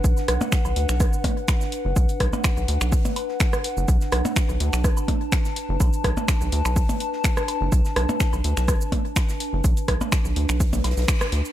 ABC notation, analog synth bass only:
X:1
M:4/4
L:1/16
Q:"Swing 16ths" 1/4=125
K:Bm
V:1 name="Analog synth bass" clef=bass
B,,, z B,,, z2 B,,, D,, B,,,2 z6 F,,, | B,,, z B,,, z2 B,,, D,, B,,,2 z6 F,,, | B,,, z B,,, z2 B,,, D,, B,,,2 z6 F,,, | B,,, z B,,, z2 B,,, D,, B,,,2 z6 F,,, |
B,,, z B,,, z2 B,,, D,, B,,,2 z6 F,,, | B,,, z B,,, z2 B,,, D,, B,,,2 B,,, B,,, B,,, z2 D,, z |]